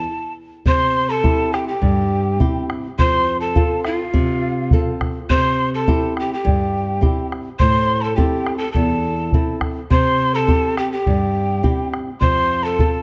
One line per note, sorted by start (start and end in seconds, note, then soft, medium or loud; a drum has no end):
0.00 0.33 A5 loud
0.66 1.22 C3 medium
0.66 1.11 C5 medium
0.66 1.11 C6 loud
0.66 bombo low medium
1.10 1.55 A4 medium
1.10 1.56 A5 loud
1.24 1.70 C4 medium
1.24 1.70 E4 soft
1.24 1.70 G4 medium
1.24 bombo low medium
1.53 1.67 G4 medium
1.53 1.68 G5 medium
1.53 bombo rim medium
1.68 2.65 G4 medium
1.68 2.66 G5 medium
1.82 2.38 G2 medium
1.82 bombo low medium
2.40 2.86 C4 soft
2.40 2.86 E4 soft
2.40 2.86 G4 medium
2.40 bombo low medium
2.70 bombo rim medium
2.98 3.54 F2 medium
2.98 3.39 C5 medium
2.98 3.39 C6 loud
2.98 bombo low medium
3.40 3.81 A4 medium
3.40 3.81 A5 medium
3.55 4.02 C4 medium
3.55 4.02 F4 medium
3.55 4.02 A4 medium
3.55 bombo low medium
3.83 4.97 F4 medium
3.83 4.96 F5 medium
3.83 bombo rim medium
4.14 4.70 C3 medium
4.14 bombo low medium
4.71 5.18 C4 soft
4.71 5.18 F4 soft
4.71 5.19 A4 medium
4.71 bombo low medium
5.01 bombo rim medium
5.01 bombo low medium
5.30 5.85 C3 medium
5.30 5.70 C5 medium
5.30 5.70 C6 loud
5.30 bombo low medium
5.74 6.14 A4 medium
5.74 6.14 A5 medium
5.87 6.33 C4 medium
5.87 6.34 E4 medium
5.87 6.34 G4 medium
5.87 bombo low medium
6.17 6.31 G4 medium
6.17 6.30 G5 medium
6.17 bombo rim medium
6.33 7.29 G4 medium
6.33 7.29 G5 medium
6.45 7.01 G2 medium
6.45 bombo low medium
7.01 7.48 C4 soft
7.01 7.48 E4 soft
7.01 7.48 G4 soft
7.01 bombo low medium
7.32 bombo rim soft
7.59 8.16 A2 medium
7.59 8.05 C5 medium
7.59 8.03 C6 loud
7.59 bombo low medium
8.01 8.17 A4 medium
8.01 8.18 A5 medium
8.16 8.64 C4 medium
8.16 8.64 E4 soft
8.16 8.57 G4 medium
8.16 8.64 A4 medium
8.16 8.56 G5 medium
8.16 bombo low medium
8.47 bombo rim medium
8.56 8.72 A4 medium
8.56 8.71 A5 medium
8.71 9.31 E2 medium
8.71 9.56 A4 medium
8.71 9.56 A5 medium
8.71 bombo low medium
9.33 9.80 C4 medium
9.33 9.80 E4 soft
9.33 9.80 A4 medium
9.33 bombo low medium
9.61 bombo rim medium
9.61 bombo low medium
9.90 10.46 C3 medium
9.90 10.36 C5 medium
9.90 10.37 C6 loud
9.90 bombo low medium
10.35 10.77 A4 medium
10.35 10.78 A5 medium
10.48 10.94 C4 soft
10.48 10.95 E4 soft
10.48 10.94 G4 medium
10.48 bombo low medium
10.77 10.91 G4 medium
10.77 10.91 G5 medium
10.77 bombo rim medium
10.92 11.89 G4 medium
10.92 11.89 G5 medium
11.06 11.62 G2 medium
11.06 bombo low medium
11.63 12.09 C4 soft
11.63 12.09 E4 soft
11.63 12.10 G4 medium
11.63 bombo low medium
11.94 bombo rim medium
12.21 12.77 F2 medium
12.21 12.66 C5 medium
12.21 12.65 C6 loud
12.21 bombo low medium
12.63 13.02 A4 medium
12.63 13.02 A5 medium
12.79 13.02 C4 soft
12.79 13.02 F4 soft
12.79 13.02 A4 medium
12.79 bombo low medium